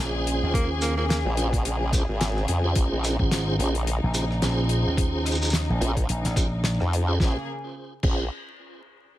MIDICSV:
0, 0, Header, 1, 7, 480
1, 0, Start_track
1, 0, Key_signature, -5, "minor"
1, 0, Tempo, 555556
1, 462, Time_signature, 4, 2, 24, 8
1, 7936, End_track
2, 0, Start_track
2, 0, Title_t, "Tonewheel organ"
2, 0, Program_c, 0, 16
2, 0, Note_on_c, 0, 61, 85
2, 0, Note_on_c, 0, 65, 77
2, 0, Note_on_c, 0, 68, 78
2, 0, Note_on_c, 0, 72, 91
2, 810, Note_off_c, 0, 61, 0
2, 810, Note_off_c, 0, 65, 0
2, 810, Note_off_c, 0, 72, 0
2, 811, Note_off_c, 0, 68, 0
2, 844, Note_on_c, 0, 61, 73
2, 844, Note_on_c, 0, 65, 70
2, 845, Note_on_c, 0, 68, 66
2, 845, Note_on_c, 0, 72, 84
2, 909, Note_off_c, 0, 61, 0
2, 909, Note_off_c, 0, 65, 0
2, 910, Note_off_c, 0, 68, 0
2, 910, Note_off_c, 0, 72, 0
2, 1186, Note_on_c, 0, 65, 76
2, 1186, Note_on_c, 0, 72, 93
2, 1187, Note_on_c, 0, 61, 87
2, 1187, Note_on_c, 0, 68, 81
2, 1274, Note_off_c, 0, 65, 0
2, 1274, Note_off_c, 0, 68, 0
2, 1274, Note_off_c, 0, 72, 0
2, 1275, Note_off_c, 0, 61, 0
2, 1665, Note_on_c, 0, 65, 94
2, 1665, Note_on_c, 0, 68, 91
2, 1665, Note_on_c, 0, 72, 115
2, 1667, Note_on_c, 0, 61, 97
2, 1754, Note_off_c, 0, 65, 0
2, 1754, Note_off_c, 0, 68, 0
2, 1754, Note_off_c, 0, 72, 0
2, 1755, Note_off_c, 0, 61, 0
2, 2283, Note_on_c, 0, 61, 85
2, 2284, Note_on_c, 0, 68, 77
2, 2284, Note_on_c, 0, 72, 93
2, 2285, Note_on_c, 0, 65, 82
2, 2728, Note_off_c, 0, 61, 0
2, 2729, Note_off_c, 0, 65, 0
2, 2729, Note_off_c, 0, 68, 0
2, 2729, Note_off_c, 0, 72, 0
2, 2760, Note_on_c, 0, 61, 108
2, 2760, Note_on_c, 0, 68, 89
2, 2761, Note_on_c, 0, 65, 99
2, 2761, Note_on_c, 0, 72, 114
2, 3078, Note_off_c, 0, 61, 0
2, 3078, Note_off_c, 0, 68, 0
2, 3078, Note_off_c, 0, 72, 0
2, 3079, Note_off_c, 0, 65, 0
2, 3103, Note_on_c, 0, 61, 83
2, 3103, Note_on_c, 0, 65, 78
2, 3104, Note_on_c, 0, 68, 78
2, 3104, Note_on_c, 0, 72, 101
2, 3245, Note_off_c, 0, 61, 0
2, 3245, Note_off_c, 0, 65, 0
2, 3245, Note_off_c, 0, 68, 0
2, 3245, Note_off_c, 0, 72, 0
2, 3580, Note_on_c, 0, 61, 78
2, 3581, Note_on_c, 0, 65, 74
2, 3581, Note_on_c, 0, 72, 88
2, 3582, Note_on_c, 0, 68, 78
2, 3671, Note_off_c, 0, 61, 0
2, 3672, Note_off_c, 0, 65, 0
2, 3672, Note_off_c, 0, 68, 0
2, 3672, Note_off_c, 0, 72, 0
2, 3823, Note_on_c, 0, 61, 85
2, 3823, Note_on_c, 0, 65, 77
2, 3823, Note_on_c, 0, 68, 78
2, 3823, Note_on_c, 0, 72, 96
2, 4647, Note_off_c, 0, 61, 0
2, 4647, Note_off_c, 0, 65, 0
2, 4647, Note_off_c, 0, 68, 0
2, 4647, Note_off_c, 0, 72, 0
2, 4678, Note_on_c, 0, 65, 70
2, 4679, Note_on_c, 0, 61, 77
2, 4679, Note_on_c, 0, 68, 72
2, 4679, Note_on_c, 0, 72, 84
2, 4746, Note_off_c, 0, 65, 0
2, 4746, Note_off_c, 0, 68, 0
2, 4747, Note_off_c, 0, 61, 0
2, 4747, Note_off_c, 0, 72, 0
2, 5019, Note_on_c, 0, 68, 84
2, 5020, Note_on_c, 0, 61, 87
2, 5021, Note_on_c, 0, 65, 80
2, 5021, Note_on_c, 0, 72, 95
2, 5110, Note_off_c, 0, 68, 0
2, 5111, Note_off_c, 0, 61, 0
2, 5111, Note_off_c, 0, 65, 0
2, 5112, Note_off_c, 0, 72, 0
2, 5500, Note_on_c, 0, 65, 88
2, 5501, Note_on_c, 0, 61, 99
2, 5501, Note_on_c, 0, 72, 117
2, 5502, Note_on_c, 0, 68, 98
2, 5591, Note_off_c, 0, 61, 0
2, 5591, Note_off_c, 0, 65, 0
2, 5592, Note_off_c, 0, 68, 0
2, 5592, Note_off_c, 0, 72, 0
2, 6117, Note_on_c, 0, 61, 88
2, 6117, Note_on_c, 0, 65, 84
2, 6117, Note_on_c, 0, 68, 83
2, 6117, Note_on_c, 0, 72, 95
2, 6208, Note_off_c, 0, 68, 0
2, 6209, Note_off_c, 0, 65, 0
2, 6210, Note_off_c, 0, 61, 0
2, 6210, Note_off_c, 0, 72, 0
2, 6219, Note_on_c, 0, 68, 81
2, 6220, Note_on_c, 0, 61, 84
2, 6220, Note_on_c, 0, 65, 79
2, 6220, Note_on_c, 0, 72, 92
2, 6367, Note_off_c, 0, 68, 0
2, 6368, Note_off_c, 0, 61, 0
2, 6368, Note_off_c, 0, 65, 0
2, 6368, Note_off_c, 0, 72, 0
2, 6939, Note_on_c, 0, 61, 86
2, 6940, Note_on_c, 0, 65, 75
2, 6940, Note_on_c, 0, 68, 79
2, 6941, Note_on_c, 0, 72, 99
2, 7126, Note_off_c, 0, 61, 0
2, 7126, Note_off_c, 0, 65, 0
2, 7126, Note_off_c, 0, 68, 0
2, 7127, Note_off_c, 0, 72, 0
2, 7936, End_track
3, 0, Start_track
3, 0, Title_t, "String section"
3, 0, Program_c, 1, 48
3, 0, Note_on_c, 1, 49, 78
3, 0, Note_on_c, 1, 68, 92
3, 2375, Note_off_c, 1, 68, 0
3, 2382, Note_on_c, 1, 63, 87
3, 6192, Note_off_c, 1, 49, 0
3, 6215, Note_off_c, 1, 63, 0
3, 6223, Note_on_c, 1, 58, 64
3, 6224, Note_on_c, 1, 49, 68
3, 6224, Note_on_c, 1, 68, 78
3, 6446, Note_off_c, 1, 49, 0
3, 6446, Note_off_c, 1, 58, 0
3, 6446, Note_off_c, 1, 68, 0
3, 7936, End_track
4, 0, Start_track
4, 0, Title_t, "Tenor saxophone"
4, 0, Program_c, 2, 66
4, 460, Note_on_c, 2, 58, 93
4, 601, Note_off_c, 2, 58, 0
4, 700, Note_on_c, 2, 58, 95
4, 811, Note_off_c, 2, 58, 0
4, 840, Note_on_c, 2, 58, 94
4, 905, Note_off_c, 2, 58, 0
4, 939, Note_on_c, 2, 58, 82
4, 1028, Note_off_c, 2, 58, 0
4, 7936, End_track
5, 0, Start_track
5, 0, Title_t, "Slap bass"
5, 0, Program_c, 3, 36
5, 0, Note_on_c, 3, 34, 94
5, 340, Note_off_c, 3, 34, 0
5, 368, Note_on_c, 3, 39, 107
5, 1062, Note_off_c, 3, 39, 0
5, 2761, Note_on_c, 3, 32, 100
5, 3087, Note_off_c, 3, 32, 0
5, 3485, Note_on_c, 3, 34, 99
5, 3809, Note_off_c, 3, 34, 0
5, 3828, Note_on_c, 3, 34, 95
5, 4180, Note_off_c, 3, 34, 0
5, 4202, Note_on_c, 3, 39, 106
5, 4899, Note_off_c, 3, 39, 0
5, 4923, Note_on_c, 3, 34, 98
5, 5008, Note_off_c, 3, 34, 0
5, 5264, Note_on_c, 3, 34, 95
5, 5378, Note_off_c, 3, 34, 0
5, 5402, Note_on_c, 3, 34, 94
5, 5859, Note_off_c, 3, 34, 0
5, 7936, End_track
6, 0, Start_track
6, 0, Title_t, "Wobble bass"
6, 0, Program_c, 4, 39
6, 1083, Note_on_c, 4, 34, 99
6, 1779, Note_off_c, 4, 34, 0
6, 1802, Note_on_c, 4, 32, 94
6, 2127, Note_off_c, 4, 32, 0
6, 2146, Note_on_c, 4, 41, 101
6, 2368, Note_off_c, 4, 41, 0
6, 2380, Note_on_c, 4, 34, 103
6, 2496, Note_off_c, 4, 34, 0
6, 2526, Note_on_c, 4, 34, 93
6, 2741, Note_off_c, 4, 34, 0
6, 3101, Note_on_c, 4, 34, 89
6, 3457, Note_off_c, 4, 34, 0
6, 5020, Note_on_c, 4, 34, 98
6, 5245, Note_off_c, 4, 34, 0
6, 5881, Note_on_c, 4, 41, 104
6, 6207, Note_off_c, 4, 41, 0
6, 6220, Note_on_c, 4, 34, 101
6, 6368, Note_off_c, 4, 34, 0
6, 6943, Note_on_c, 4, 34, 94
6, 7166, Note_off_c, 4, 34, 0
6, 7936, End_track
7, 0, Start_track
7, 0, Title_t, "Drums"
7, 233, Note_on_c, 9, 42, 86
7, 320, Note_off_c, 9, 42, 0
7, 465, Note_on_c, 9, 36, 115
7, 475, Note_on_c, 9, 42, 83
7, 551, Note_off_c, 9, 36, 0
7, 561, Note_off_c, 9, 42, 0
7, 706, Note_on_c, 9, 82, 78
7, 709, Note_on_c, 9, 37, 40
7, 717, Note_on_c, 9, 42, 73
7, 792, Note_off_c, 9, 82, 0
7, 796, Note_off_c, 9, 37, 0
7, 804, Note_off_c, 9, 42, 0
7, 954, Note_on_c, 9, 38, 117
7, 954, Note_on_c, 9, 42, 87
7, 1040, Note_off_c, 9, 38, 0
7, 1041, Note_off_c, 9, 42, 0
7, 1186, Note_on_c, 9, 42, 76
7, 1272, Note_off_c, 9, 42, 0
7, 1321, Note_on_c, 9, 36, 61
7, 1326, Note_on_c, 9, 42, 55
7, 1407, Note_off_c, 9, 36, 0
7, 1413, Note_off_c, 9, 42, 0
7, 1427, Note_on_c, 9, 42, 81
7, 1513, Note_off_c, 9, 42, 0
7, 1663, Note_on_c, 9, 36, 100
7, 1666, Note_on_c, 9, 42, 67
7, 1670, Note_on_c, 9, 82, 81
7, 1749, Note_off_c, 9, 36, 0
7, 1753, Note_off_c, 9, 42, 0
7, 1757, Note_off_c, 9, 82, 0
7, 1907, Note_on_c, 9, 42, 89
7, 1908, Note_on_c, 9, 37, 40
7, 1910, Note_on_c, 9, 38, 118
7, 1993, Note_off_c, 9, 42, 0
7, 1994, Note_off_c, 9, 37, 0
7, 1997, Note_off_c, 9, 38, 0
7, 2045, Note_on_c, 9, 37, 41
7, 2131, Note_off_c, 9, 37, 0
7, 2143, Note_on_c, 9, 42, 82
7, 2230, Note_off_c, 9, 42, 0
7, 2381, Note_on_c, 9, 36, 115
7, 2381, Note_on_c, 9, 42, 94
7, 2467, Note_off_c, 9, 42, 0
7, 2468, Note_off_c, 9, 36, 0
7, 2624, Note_on_c, 9, 37, 40
7, 2629, Note_on_c, 9, 82, 78
7, 2632, Note_on_c, 9, 42, 74
7, 2710, Note_off_c, 9, 37, 0
7, 2715, Note_off_c, 9, 82, 0
7, 2719, Note_off_c, 9, 42, 0
7, 2758, Note_on_c, 9, 36, 98
7, 2844, Note_off_c, 9, 36, 0
7, 2863, Note_on_c, 9, 38, 120
7, 2867, Note_on_c, 9, 42, 94
7, 2950, Note_off_c, 9, 38, 0
7, 2954, Note_off_c, 9, 42, 0
7, 3108, Note_on_c, 9, 42, 70
7, 3194, Note_off_c, 9, 42, 0
7, 3239, Note_on_c, 9, 42, 50
7, 3325, Note_off_c, 9, 42, 0
7, 3346, Note_on_c, 9, 42, 84
7, 3432, Note_off_c, 9, 42, 0
7, 3579, Note_on_c, 9, 82, 73
7, 3582, Note_on_c, 9, 42, 77
7, 3665, Note_off_c, 9, 82, 0
7, 3668, Note_off_c, 9, 42, 0
7, 3722, Note_on_c, 9, 37, 36
7, 3809, Note_off_c, 9, 37, 0
7, 3820, Note_on_c, 9, 42, 83
7, 3822, Note_on_c, 9, 38, 111
7, 3906, Note_off_c, 9, 42, 0
7, 3908, Note_off_c, 9, 38, 0
7, 4054, Note_on_c, 9, 42, 82
7, 4141, Note_off_c, 9, 42, 0
7, 4298, Note_on_c, 9, 36, 115
7, 4303, Note_on_c, 9, 42, 94
7, 4385, Note_off_c, 9, 36, 0
7, 4390, Note_off_c, 9, 42, 0
7, 4541, Note_on_c, 9, 37, 40
7, 4545, Note_on_c, 9, 82, 36
7, 4547, Note_on_c, 9, 42, 84
7, 4590, Note_off_c, 9, 82, 0
7, 4590, Note_on_c, 9, 82, 43
7, 4623, Note_off_c, 9, 82, 0
7, 4623, Note_on_c, 9, 82, 50
7, 4628, Note_off_c, 9, 37, 0
7, 4634, Note_off_c, 9, 42, 0
7, 4683, Note_off_c, 9, 82, 0
7, 4683, Note_on_c, 9, 82, 59
7, 4706, Note_off_c, 9, 82, 0
7, 4706, Note_on_c, 9, 82, 66
7, 4752, Note_off_c, 9, 82, 0
7, 4752, Note_on_c, 9, 82, 70
7, 4778, Note_on_c, 9, 38, 114
7, 4783, Note_on_c, 9, 42, 96
7, 4838, Note_off_c, 9, 82, 0
7, 4865, Note_off_c, 9, 38, 0
7, 4869, Note_off_c, 9, 42, 0
7, 5025, Note_on_c, 9, 42, 76
7, 5112, Note_off_c, 9, 42, 0
7, 5155, Note_on_c, 9, 36, 64
7, 5157, Note_on_c, 9, 42, 48
7, 5241, Note_off_c, 9, 36, 0
7, 5244, Note_off_c, 9, 42, 0
7, 5262, Note_on_c, 9, 42, 86
7, 5348, Note_off_c, 9, 42, 0
7, 5395, Note_on_c, 9, 38, 34
7, 5400, Note_on_c, 9, 42, 62
7, 5482, Note_off_c, 9, 38, 0
7, 5486, Note_off_c, 9, 42, 0
7, 5498, Note_on_c, 9, 36, 99
7, 5501, Note_on_c, 9, 42, 70
7, 5503, Note_on_c, 9, 82, 80
7, 5584, Note_off_c, 9, 36, 0
7, 5587, Note_off_c, 9, 42, 0
7, 5590, Note_off_c, 9, 82, 0
7, 5735, Note_on_c, 9, 38, 103
7, 5741, Note_on_c, 9, 37, 39
7, 5743, Note_on_c, 9, 42, 83
7, 5821, Note_off_c, 9, 38, 0
7, 5828, Note_off_c, 9, 37, 0
7, 5830, Note_off_c, 9, 42, 0
7, 5878, Note_on_c, 9, 37, 41
7, 5965, Note_off_c, 9, 37, 0
7, 5990, Note_on_c, 9, 42, 76
7, 6077, Note_off_c, 9, 42, 0
7, 6220, Note_on_c, 9, 36, 119
7, 6224, Note_on_c, 9, 38, 84
7, 6306, Note_off_c, 9, 36, 0
7, 6310, Note_off_c, 9, 38, 0
7, 6940, Note_on_c, 9, 36, 122
7, 6941, Note_on_c, 9, 49, 84
7, 7027, Note_off_c, 9, 36, 0
7, 7027, Note_off_c, 9, 49, 0
7, 7936, End_track
0, 0, End_of_file